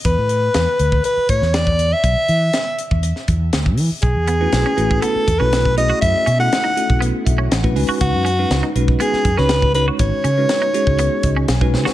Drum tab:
HH |x-x-x-x-x-x-x-x-|x-x-x-x-x-x-x-o-|x-x-x-x-x-x-x-x-|x-x-x-x-x-x-x-o-|
SD |----o------oo---|----o----o--o---|----o-------o---|----o-------o---|
BD |o------o--o--o--|o------o--o--o--|o------o--o--o--|o------o--o--o--|

HH |x-x-x-x-x-x-x-x-|x-x-x-x-x-x-x---|
SD |----o----o-oo---|----o-------o-oo|
BD |o------o--o--o--|o------o--o--o--|